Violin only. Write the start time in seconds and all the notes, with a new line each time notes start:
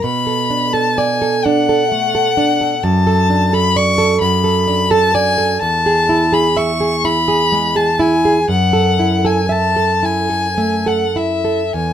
0.04 B5
0.73 A5
0.98 G#5
1.45 F#5
2.83 A5
3.54 B5
3.76 C#6
4.21 B5
4.90 A5
5.14 G#5
5.61 A5
6.34 B5
6.57 C#6
7.05 B5
7.76 A5
8.01 G#5
8.50 F#5
9.26 G#5
9.51 A5
10.05 G#5
10.87 F#5
11.17 E5
11.75 G#5